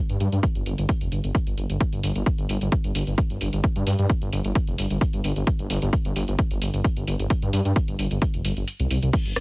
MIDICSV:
0, 0, Header, 1, 3, 480
1, 0, Start_track
1, 0, Tempo, 458015
1, 1893, Time_signature, 4, 2, 24, 8
1, 9855, End_track
2, 0, Start_track
2, 0, Title_t, "Detuned saw bass"
2, 0, Program_c, 0, 39
2, 99, Note_on_c, 0, 43, 89
2, 172, Note_off_c, 0, 43, 0
2, 211, Note_on_c, 0, 43, 102
2, 293, Note_off_c, 0, 43, 0
2, 338, Note_on_c, 0, 43, 99
2, 412, Note_off_c, 0, 43, 0
2, 578, Note_on_c, 0, 31, 94
2, 651, Note_off_c, 0, 31, 0
2, 692, Note_on_c, 0, 31, 98
2, 774, Note_off_c, 0, 31, 0
2, 818, Note_on_c, 0, 31, 91
2, 892, Note_off_c, 0, 31, 0
2, 1058, Note_on_c, 0, 29, 86
2, 1132, Note_off_c, 0, 29, 0
2, 1171, Note_on_c, 0, 31, 86
2, 1253, Note_off_c, 0, 31, 0
2, 1298, Note_on_c, 0, 31, 91
2, 1372, Note_off_c, 0, 31, 0
2, 1537, Note_on_c, 0, 31, 82
2, 1611, Note_off_c, 0, 31, 0
2, 1650, Note_on_c, 0, 31, 96
2, 1732, Note_off_c, 0, 31, 0
2, 1777, Note_on_c, 0, 31, 85
2, 1851, Note_off_c, 0, 31, 0
2, 2017, Note_on_c, 0, 31, 92
2, 2091, Note_off_c, 0, 31, 0
2, 2131, Note_on_c, 0, 31, 103
2, 2213, Note_off_c, 0, 31, 0
2, 2258, Note_on_c, 0, 31, 95
2, 2332, Note_off_c, 0, 31, 0
2, 2497, Note_on_c, 0, 31, 88
2, 2571, Note_off_c, 0, 31, 0
2, 2612, Note_on_c, 0, 31, 101
2, 2694, Note_off_c, 0, 31, 0
2, 2739, Note_on_c, 0, 31, 91
2, 2812, Note_off_c, 0, 31, 0
2, 2979, Note_on_c, 0, 31, 83
2, 3052, Note_off_c, 0, 31, 0
2, 3093, Note_on_c, 0, 31, 98
2, 3174, Note_off_c, 0, 31, 0
2, 3219, Note_on_c, 0, 31, 88
2, 3292, Note_off_c, 0, 31, 0
2, 3459, Note_on_c, 0, 31, 84
2, 3532, Note_off_c, 0, 31, 0
2, 3572, Note_on_c, 0, 31, 98
2, 3653, Note_off_c, 0, 31, 0
2, 3698, Note_on_c, 0, 31, 91
2, 3772, Note_off_c, 0, 31, 0
2, 3938, Note_on_c, 0, 43, 92
2, 4012, Note_off_c, 0, 43, 0
2, 4053, Note_on_c, 0, 43, 99
2, 4134, Note_off_c, 0, 43, 0
2, 4179, Note_on_c, 0, 43, 92
2, 4252, Note_off_c, 0, 43, 0
2, 4418, Note_on_c, 0, 31, 94
2, 4492, Note_off_c, 0, 31, 0
2, 4532, Note_on_c, 0, 31, 98
2, 4614, Note_off_c, 0, 31, 0
2, 4659, Note_on_c, 0, 31, 90
2, 4732, Note_off_c, 0, 31, 0
2, 4899, Note_on_c, 0, 29, 84
2, 4972, Note_off_c, 0, 29, 0
2, 5013, Note_on_c, 0, 31, 91
2, 5094, Note_off_c, 0, 31, 0
2, 5139, Note_on_c, 0, 31, 93
2, 5212, Note_off_c, 0, 31, 0
2, 5380, Note_on_c, 0, 31, 88
2, 5452, Note_off_c, 0, 31, 0
2, 5493, Note_on_c, 0, 31, 97
2, 5574, Note_off_c, 0, 31, 0
2, 5619, Note_on_c, 0, 31, 91
2, 5692, Note_off_c, 0, 31, 0
2, 5859, Note_on_c, 0, 31, 88
2, 5932, Note_off_c, 0, 31, 0
2, 5973, Note_on_c, 0, 31, 99
2, 6054, Note_off_c, 0, 31, 0
2, 6101, Note_on_c, 0, 31, 93
2, 6173, Note_off_c, 0, 31, 0
2, 6341, Note_on_c, 0, 31, 91
2, 6413, Note_off_c, 0, 31, 0
2, 6454, Note_on_c, 0, 31, 95
2, 6534, Note_off_c, 0, 31, 0
2, 6580, Note_on_c, 0, 31, 91
2, 6653, Note_off_c, 0, 31, 0
2, 6820, Note_on_c, 0, 31, 84
2, 6893, Note_off_c, 0, 31, 0
2, 6933, Note_on_c, 0, 31, 93
2, 7014, Note_off_c, 0, 31, 0
2, 7059, Note_on_c, 0, 31, 92
2, 7132, Note_off_c, 0, 31, 0
2, 7298, Note_on_c, 0, 31, 83
2, 7372, Note_off_c, 0, 31, 0
2, 7413, Note_on_c, 0, 31, 97
2, 7494, Note_off_c, 0, 31, 0
2, 7538, Note_on_c, 0, 31, 90
2, 7612, Note_off_c, 0, 31, 0
2, 7778, Note_on_c, 0, 43, 93
2, 7852, Note_off_c, 0, 43, 0
2, 7892, Note_on_c, 0, 43, 97
2, 7974, Note_off_c, 0, 43, 0
2, 8019, Note_on_c, 0, 43, 97
2, 8092, Note_off_c, 0, 43, 0
2, 8258, Note_on_c, 0, 31, 90
2, 8332, Note_off_c, 0, 31, 0
2, 8372, Note_on_c, 0, 31, 98
2, 8454, Note_off_c, 0, 31, 0
2, 8498, Note_on_c, 0, 31, 94
2, 8572, Note_off_c, 0, 31, 0
2, 8738, Note_on_c, 0, 29, 84
2, 8811, Note_off_c, 0, 29, 0
2, 8852, Note_on_c, 0, 31, 93
2, 8933, Note_off_c, 0, 31, 0
2, 8978, Note_on_c, 0, 31, 90
2, 9052, Note_off_c, 0, 31, 0
2, 9219, Note_on_c, 0, 36, 86
2, 9292, Note_off_c, 0, 36, 0
2, 9332, Note_on_c, 0, 36, 94
2, 9414, Note_off_c, 0, 36, 0
2, 9458, Note_on_c, 0, 36, 88
2, 9532, Note_off_c, 0, 36, 0
2, 9698, Note_on_c, 0, 31, 92
2, 9772, Note_off_c, 0, 31, 0
2, 9812, Note_on_c, 0, 31, 101
2, 9855, Note_off_c, 0, 31, 0
2, 9855, End_track
3, 0, Start_track
3, 0, Title_t, "Drums"
3, 100, Note_on_c, 9, 42, 54
3, 204, Note_off_c, 9, 42, 0
3, 213, Note_on_c, 9, 42, 64
3, 318, Note_off_c, 9, 42, 0
3, 340, Note_on_c, 9, 42, 54
3, 444, Note_off_c, 9, 42, 0
3, 452, Note_on_c, 9, 36, 127
3, 453, Note_on_c, 9, 42, 88
3, 557, Note_off_c, 9, 36, 0
3, 558, Note_off_c, 9, 42, 0
3, 579, Note_on_c, 9, 42, 47
3, 684, Note_off_c, 9, 42, 0
3, 693, Note_on_c, 9, 42, 65
3, 798, Note_off_c, 9, 42, 0
3, 819, Note_on_c, 9, 42, 51
3, 924, Note_off_c, 9, 42, 0
3, 932, Note_on_c, 9, 36, 116
3, 933, Note_on_c, 9, 42, 91
3, 1037, Note_off_c, 9, 36, 0
3, 1037, Note_off_c, 9, 42, 0
3, 1059, Note_on_c, 9, 42, 54
3, 1164, Note_off_c, 9, 42, 0
3, 1172, Note_on_c, 9, 42, 64
3, 1277, Note_off_c, 9, 42, 0
3, 1298, Note_on_c, 9, 42, 53
3, 1403, Note_off_c, 9, 42, 0
3, 1412, Note_on_c, 9, 36, 122
3, 1412, Note_on_c, 9, 42, 89
3, 1517, Note_off_c, 9, 36, 0
3, 1517, Note_off_c, 9, 42, 0
3, 1538, Note_on_c, 9, 42, 51
3, 1643, Note_off_c, 9, 42, 0
3, 1652, Note_on_c, 9, 42, 67
3, 1756, Note_off_c, 9, 42, 0
3, 1778, Note_on_c, 9, 42, 53
3, 1883, Note_off_c, 9, 42, 0
3, 1892, Note_on_c, 9, 36, 122
3, 1892, Note_on_c, 9, 42, 85
3, 1997, Note_off_c, 9, 36, 0
3, 1997, Note_off_c, 9, 42, 0
3, 2018, Note_on_c, 9, 42, 49
3, 2123, Note_off_c, 9, 42, 0
3, 2132, Note_on_c, 9, 46, 102
3, 2237, Note_off_c, 9, 46, 0
3, 2259, Note_on_c, 9, 42, 52
3, 2364, Note_off_c, 9, 42, 0
3, 2371, Note_on_c, 9, 42, 84
3, 2372, Note_on_c, 9, 36, 123
3, 2476, Note_off_c, 9, 36, 0
3, 2476, Note_off_c, 9, 42, 0
3, 2497, Note_on_c, 9, 42, 49
3, 2602, Note_off_c, 9, 42, 0
3, 2612, Note_on_c, 9, 46, 95
3, 2716, Note_off_c, 9, 46, 0
3, 2738, Note_on_c, 9, 42, 50
3, 2842, Note_off_c, 9, 42, 0
3, 2851, Note_on_c, 9, 36, 113
3, 2852, Note_on_c, 9, 42, 84
3, 2956, Note_off_c, 9, 36, 0
3, 2957, Note_off_c, 9, 42, 0
3, 2978, Note_on_c, 9, 42, 50
3, 3083, Note_off_c, 9, 42, 0
3, 3092, Note_on_c, 9, 46, 106
3, 3197, Note_off_c, 9, 46, 0
3, 3218, Note_on_c, 9, 42, 49
3, 3323, Note_off_c, 9, 42, 0
3, 3332, Note_on_c, 9, 36, 127
3, 3332, Note_on_c, 9, 42, 84
3, 3436, Note_off_c, 9, 36, 0
3, 3437, Note_off_c, 9, 42, 0
3, 3459, Note_on_c, 9, 42, 47
3, 3564, Note_off_c, 9, 42, 0
3, 3572, Note_on_c, 9, 46, 95
3, 3677, Note_off_c, 9, 46, 0
3, 3698, Note_on_c, 9, 42, 52
3, 3803, Note_off_c, 9, 42, 0
3, 3811, Note_on_c, 9, 42, 84
3, 3812, Note_on_c, 9, 36, 111
3, 3916, Note_off_c, 9, 42, 0
3, 3917, Note_off_c, 9, 36, 0
3, 3938, Note_on_c, 9, 42, 49
3, 4043, Note_off_c, 9, 42, 0
3, 4052, Note_on_c, 9, 46, 100
3, 4157, Note_off_c, 9, 46, 0
3, 4179, Note_on_c, 9, 42, 51
3, 4284, Note_off_c, 9, 42, 0
3, 4292, Note_on_c, 9, 36, 119
3, 4292, Note_on_c, 9, 42, 88
3, 4397, Note_off_c, 9, 36, 0
3, 4397, Note_off_c, 9, 42, 0
3, 4419, Note_on_c, 9, 42, 48
3, 4524, Note_off_c, 9, 42, 0
3, 4533, Note_on_c, 9, 46, 90
3, 4638, Note_off_c, 9, 46, 0
3, 4659, Note_on_c, 9, 42, 49
3, 4764, Note_off_c, 9, 42, 0
3, 4772, Note_on_c, 9, 42, 86
3, 4773, Note_on_c, 9, 36, 117
3, 4877, Note_off_c, 9, 36, 0
3, 4877, Note_off_c, 9, 42, 0
3, 4898, Note_on_c, 9, 42, 50
3, 5003, Note_off_c, 9, 42, 0
3, 5013, Note_on_c, 9, 46, 102
3, 5118, Note_off_c, 9, 46, 0
3, 5139, Note_on_c, 9, 42, 51
3, 5244, Note_off_c, 9, 42, 0
3, 5253, Note_on_c, 9, 36, 117
3, 5253, Note_on_c, 9, 42, 93
3, 5357, Note_off_c, 9, 42, 0
3, 5358, Note_off_c, 9, 36, 0
3, 5378, Note_on_c, 9, 42, 47
3, 5483, Note_off_c, 9, 42, 0
3, 5492, Note_on_c, 9, 46, 93
3, 5597, Note_off_c, 9, 46, 0
3, 5619, Note_on_c, 9, 42, 54
3, 5724, Note_off_c, 9, 42, 0
3, 5733, Note_on_c, 9, 36, 114
3, 5733, Note_on_c, 9, 42, 85
3, 5837, Note_off_c, 9, 42, 0
3, 5838, Note_off_c, 9, 36, 0
3, 5860, Note_on_c, 9, 42, 52
3, 5964, Note_off_c, 9, 42, 0
3, 5973, Note_on_c, 9, 46, 104
3, 6078, Note_off_c, 9, 46, 0
3, 6100, Note_on_c, 9, 42, 54
3, 6205, Note_off_c, 9, 42, 0
3, 6213, Note_on_c, 9, 36, 123
3, 6214, Note_on_c, 9, 42, 88
3, 6318, Note_off_c, 9, 36, 0
3, 6319, Note_off_c, 9, 42, 0
3, 6341, Note_on_c, 9, 42, 51
3, 6446, Note_off_c, 9, 42, 0
3, 6454, Note_on_c, 9, 46, 88
3, 6559, Note_off_c, 9, 46, 0
3, 6581, Note_on_c, 9, 42, 53
3, 6686, Note_off_c, 9, 42, 0
3, 6693, Note_on_c, 9, 36, 106
3, 6694, Note_on_c, 9, 42, 90
3, 6798, Note_off_c, 9, 36, 0
3, 6799, Note_off_c, 9, 42, 0
3, 6820, Note_on_c, 9, 42, 55
3, 6925, Note_off_c, 9, 42, 0
3, 6934, Note_on_c, 9, 46, 102
3, 7039, Note_off_c, 9, 46, 0
3, 7060, Note_on_c, 9, 42, 52
3, 7165, Note_off_c, 9, 42, 0
3, 7173, Note_on_c, 9, 36, 112
3, 7174, Note_on_c, 9, 42, 90
3, 7278, Note_off_c, 9, 36, 0
3, 7279, Note_off_c, 9, 42, 0
3, 7300, Note_on_c, 9, 42, 47
3, 7405, Note_off_c, 9, 42, 0
3, 7414, Note_on_c, 9, 46, 92
3, 7519, Note_off_c, 9, 46, 0
3, 7540, Note_on_c, 9, 42, 53
3, 7645, Note_off_c, 9, 42, 0
3, 7653, Note_on_c, 9, 36, 118
3, 7653, Note_on_c, 9, 42, 89
3, 7758, Note_off_c, 9, 36, 0
3, 7758, Note_off_c, 9, 42, 0
3, 7780, Note_on_c, 9, 42, 53
3, 7885, Note_off_c, 9, 42, 0
3, 7893, Note_on_c, 9, 46, 105
3, 7998, Note_off_c, 9, 46, 0
3, 8019, Note_on_c, 9, 42, 55
3, 8124, Note_off_c, 9, 42, 0
3, 8133, Note_on_c, 9, 36, 120
3, 8133, Note_on_c, 9, 42, 87
3, 8237, Note_off_c, 9, 36, 0
3, 8238, Note_off_c, 9, 42, 0
3, 8259, Note_on_c, 9, 42, 52
3, 8364, Note_off_c, 9, 42, 0
3, 8372, Note_on_c, 9, 46, 96
3, 8477, Note_off_c, 9, 46, 0
3, 8498, Note_on_c, 9, 42, 53
3, 8603, Note_off_c, 9, 42, 0
3, 8612, Note_on_c, 9, 36, 117
3, 8612, Note_on_c, 9, 42, 92
3, 8717, Note_off_c, 9, 36, 0
3, 8717, Note_off_c, 9, 42, 0
3, 8738, Note_on_c, 9, 42, 57
3, 8843, Note_off_c, 9, 42, 0
3, 8852, Note_on_c, 9, 46, 103
3, 8957, Note_off_c, 9, 46, 0
3, 8979, Note_on_c, 9, 42, 53
3, 9083, Note_off_c, 9, 42, 0
3, 9092, Note_on_c, 9, 42, 98
3, 9197, Note_off_c, 9, 42, 0
3, 9219, Note_on_c, 9, 42, 52
3, 9323, Note_off_c, 9, 42, 0
3, 9333, Note_on_c, 9, 46, 91
3, 9437, Note_off_c, 9, 46, 0
3, 9458, Note_on_c, 9, 42, 57
3, 9563, Note_off_c, 9, 42, 0
3, 9572, Note_on_c, 9, 36, 127
3, 9572, Note_on_c, 9, 42, 94
3, 9572, Note_on_c, 9, 49, 105
3, 9677, Note_off_c, 9, 36, 0
3, 9677, Note_off_c, 9, 42, 0
3, 9677, Note_off_c, 9, 49, 0
3, 9699, Note_on_c, 9, 42, 55
3, 9804, Note_off_c, 9, 42, 0
3, 9812, Note_on_c, 9, 37, 94
3, 9812, Note_on_c, 9, 46, 109
3, 9855, Note_off_c, 9, 37, 0
3, 9855, Note_off_c, 9, 46, 0
3, 9855, End_track
0, 0, End_of_file